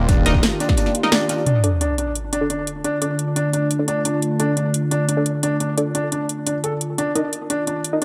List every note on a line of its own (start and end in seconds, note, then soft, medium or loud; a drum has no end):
0.00 1.43 D#3 medium
0.00 1.42 A#3 medium
0.00 1.43 F4 medium
0.00 1.43 G4 medium
0.09 0.42 D#1 loud
0.09 0.21 D4 loud
0.09 kick loud
0.09 closed hi-hat medium
0.26 0.38 D4 medium
0.26 0.31 D#4 medium
0.26 0.31 A#4 medium
0.26 0.31 D#5 loud
0.26 snare loud
0.26 closed hi-hat medium
0.26 closed hi-hat loud
0.34 kick medium
0.34 snare soft
0.43 snare loud
0.43 closed hi-hat loud
0.43 closed hi-hat medium
0.60 0.72 D4 loud
0.60 closed hi-hat medium
0.60 closed hi-hat loud
0.69 kick loud
0.69 snare medium
0.77 0.89 D4 medium
0.77 closed hi-hat medium
0.86 snare soft
0.86 closed hi-hat soft
0.95 closed hi-hat loud
1.03 1.09 D#4 medium
1.03 1.09 A#4 medium
1.03 1.09 D#5 loud
1.03 snare medium
1.12 1.24 D4 loud
1.12 snare loud
1.12 closed hi-hat medium
1.20 closed hi-hat soft
1.29 1.41 D4 medium
1.29 closed hi-hat loud
1.29 closed hi-hat medium
1.46 6.94 D3 medium
1.46 6.94 A3 medium
1.46 6.94 D4 medium
1.46 1.58 D4 medium
1.46 8.04 F4 medium
1.46 closed hi-hat medium
1.46 sub drop medium
1.64 1.69 D4 medium
1.64 1.69 A4 medium
1.64 1.69 D5 loud
1.64 closed hi-hat medium
1.81 1.93 D4 medium
1.81 closed hi-hat medium
1.98 2.10 D4 medium
1.98 closed hi-hat medium
2.15 closed hi-hat medium
2.33 2.45 D4 loud
2.33 closed hi-hat medium
2.41 2.47 D4 medium
2.41 2.47 A4 medium
2.41 2.47 D5 medium
2.50 2.62 D4 medium
2.50 closed hi-hat medium
2.67 closed hi-hat medium
2.84 2.96 D4 loud
2.84 closed hi-hat medium
3.02 3.14 D4 medium
3.02 3.07 D4 medium
3.02 3.07 A4 medium
3.02 3.07 D5 loud
3.02 closed hi-hat medium
3.19 closed hi-hat medium
3.36 3.48 D4 medium
3.36 closed hi-hat medium
3.53 3.65 D4 medium
3.53 closed hi-hat medium
3.71 closed hi-hat medium
3.79 3.85 D4 medium
3.79 3.84 A4 medium
3.79 3.85 D5 medium
3.88 4.00 D4 medium
3.88 closed hi-hat medium
4.05 4.17 D4 medium
4.05 closed hi-hat medium
4.22 closed hi-hat medium
4.40 4.45 D4 medium
4.40 4.52 D4 loud
4.40 4.45 A4 medium
4.40 4.45 D5 loud
4.40 closed hi-hat medium
4.57 4.69 D4 medium
4.57 closed hi-hat medium
4.74 closed hi-hat medium
4.91 5.03 D4 loud
4.91 closed hi-hat medium
5.09 5.21 D4 medium
5.09 closed hi-hat medium
5.17 5.22 D4 medium
5.17 5.22 A4 medium
5.17 5.22 D5 medium
5.26 closed hi-hat medium
5.43 5.55 D4 loud
5.43 closed hi-hat medium
5.60 5.72 D4 medium
5.60 closed hi-hat medium
5.78 5.83 D4 medium
5.78 5.83 A4 medium
5.78 5.83 D5 loud
5.78 closed hi-hat medium
5.95 6.07 D4 medium
5.95 closed hi-hat medium
6.12 6.24 D4 medium
6.12 closed hi-hat medium
6.29 closed hi-hat medium
6.47 6.54 D4 medium
6.47 closed hi-hat medium
6.64 6.71 A4 medium
6.64 closed hi-hat medium
6.81 closed hi-hat medium
6.98 8.04 D#3 medium
6.98 8.04 A#3 medium
6.98 7.10 D4 medium
6.98 8.04 G4 medium
6.98 closed hi-hat medium
7.15 7.27 D4 medium
7.15 7.21 D#4 medium
7.15 7.21 A#4 medium
7.15 7.21 D#5 loud
7.15 closed hi-hat medium
7.33 closed hi-hat medium
7.50 7.62 D4 loud
7.50 closed hi-hat medium
7.67 7.79 D4 medium
7.67 closed hi-hat medium
7.84 closed hi-hat medium
7.93 7.98 D#4 medium
7.93 7.98 A#4 medium
7.93 7.98 D#5 medium